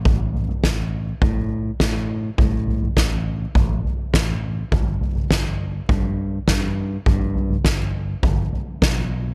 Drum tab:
SD |----o-------o---|----o-------o---|----o-------o---|----o-------o---|
FT |o-oo----o-------|o-oo----o-o-----|o-oo----o-------|o-oo----o-o-----|
BD |o---o---o---o---|o---o---o---o---|o---o---o---o---|o---o---o---o---|